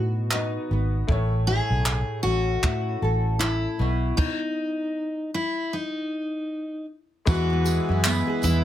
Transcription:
0.00 0.56 A2 medium
0.00 1.09 B2 medium
0.00 0.26 B3 medium
0.00 0.70 B3 medium
0.00 0.32 D#4 medium
0.00 0.27 F#4 medium
0.00 1.09 F#4 medium
0.00 0.28 D#5 medium
0.31 1.08 B3 medium
0.31 1.19 D#4 medium
0.31 1.09 F#4 medium
0.31 1.09 D#5 medium
0.31 clap loud
0.70 1.02 G#1 medium
0.70 1.18 B3 medium
1.07 1.59 A1 loud
1.07 3.80 A2 medium
1.07 3.75 A3 medium
1.07 3.76 E4 medium
1.07 3.77 C#5 medium
1.07 kick loud
1.47 2.63 E4 medium
1.47 2.22 G#4 loud
1.70 2.02 B1 medium
1.86 clap loud
2.23 2.56 A1 medium
2.23 3.89 C#4 medium
2.23 3.36 F#4 medium
2.63 2.95 A2 loud
2.63 3.40 E4 medium
2.63 kick loud
2.63 clap medium
3.02 3.65 A1 medium
3.02 3.89 A4 medium
3.39 4.17 E4 medium
3.39 3.89 E4 medium
3.39 clap loud
3.79 4.11 B1 loud
3.79 4.27 B2 medium
4.17 5.30 D#4 medium
4.17 kick loud
4.17 crash medium
5.34 5.74 E4 medium
5.73 6.85 D#4 medium
7.25 7.78 E2 loud
7.25 8.64 E3 medium
7.25 8.64 G#3 medium
7.25 8.64 B3 medium
7.25 8.64 E4 medium
7.25 8.01 F#4 medium
7.25 8.64 B4 medium
7.25 kick loud
7.25 tambourine medium
7.50 8.04 B3 medium
7.65 8.26 G#4 medium
7.65 tambourine medium
7.65 tambourine soft
7.89 8.21 F#2 medium
7.89 8.43 E4 medium
8.04 8.64 B3 medium
8.04 8.43 E4 medium
8.04 clap loud
8.04 tambourine medium
8.27 8.64 G#4 medium
8.42 8.64 E2 loud
8.42 8.64 E4 medium
8.42 tambourine soft
8.42 tambourine medium

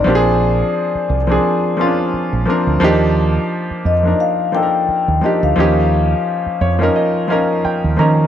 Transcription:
0.00 1.94 D5 medium
0.04 0.62 A#1 medium
0.04 1.15 F3 medium
0.04 1.16 A#3 medium
0.04 1.16 C4 medium
0.04 1.17 D4 medium
0.09 0.14 G4 medium
0.15 1.21 G#4 loud
0.95 muted fingered electric bass stroke soft
1.10 1.37 C2 medium
1.27 1.73 F3 medium
1.27 1.73 A#3 medium
1.27 1.74 C4 medium
1.27 1.75 D4 medium
1.32 1.75 G#4 medium
1.77 2.41 F3 medium
1.77 2.41 A#3 medium
1.77 2.42 C4 medium
1.77 1.86 C#4 medium
1.81 2.43 F4 medium
1.86 2.46 D4 medium
2.13 muted fingered electric bass stroke soft
2.33 2.44 A#1 medium
2.46 2.78 F3 medium
2.46 2.78 A#3 medium
2.46 2.79 C4 medium
2.46 2.79 D4 medium
2.50 2.80 A#4 medium
2.67 2.79 D2 medium
2.80 3.37 D#2 medium
2.80 3.91 F3 loud
2.80 3.92 A#3 loud
2.80 3.92 D4 medium
2.80 3.93 D#4 medium
2.84 3.93 G4 loud
3.71 muted fingered electric bass stroke soft
3.85 4.13 F2 medium
3.85 4.21 D#5 medium
4.03 4.49 F3 medium
4.03 4.49 A#3 medium
4.03 4.50 D4 medium
4.03 4.50 D#4 medium
4.07 4.51 A#4 medium
4.20 4.55 F5 medium
4.52 5.16 F3 medium
4.52 5.17 A#3 medium
4.52 5.17 D4 medium
4.52 5.18 D#4 medium
4.52 5.19 G5 medium
4.57 4.62 A4 medium
4.63 5.22 A#4 medium
4.89 muted fingered electric bass stroke soft
5.08 5.20 D#2 medium
5.21 5.54 F3 medium
5.21 5.54 A#3 medium
5.21 5.55 D4 medium
5.21 5.55 D#4 medium
5.21 5.32 D#5 medium
5.26 5.56 G4 medium
5.43 5.54 D2 medium
5.43 7.45 F5 medium
5.56 6.13 D#2 medium
5.56 6.67 F3 medium
5.56 6.67 A#3 medium
5.56 6.68 C#4 medium
5.56 6.69 D#4 medium
5.60 6.69 G4 medium
6.46 muted fingered electric bass stroke soft
6.61 6.88 F2 medium
6.61 6.93 C#5 medium
6.79 7.25 F3 medium
6.79 7.25 A#3 medium
6.79 7.26 C#4 medium
6.79 7.26 D#4 medium
6.83 7.27 A#4 medium
6.96 7.27 D#5 medium
7.28 7.92 F3 medium
7.28 7.93 A#3 medium
7.28 7.93 C#4 medium
7.28 7.94 D#4 medium
7.28 7.62 F5 medium
7.32 7.94 A#4 medium
7.64 7.96 G5 medium
7.64 muted fingered electric bass stroke soft
7.84 7.96 D#2 medium
7.97 8.27 D#3 loud
7.97 8.27 F3 medium
7.97 8.27 A#3 medium
7.97 8.27 C#4 medium
7.97 8.27 D#4 medium
7.97 8.27 A#5 medium
8.01 8.27 A#4 medium

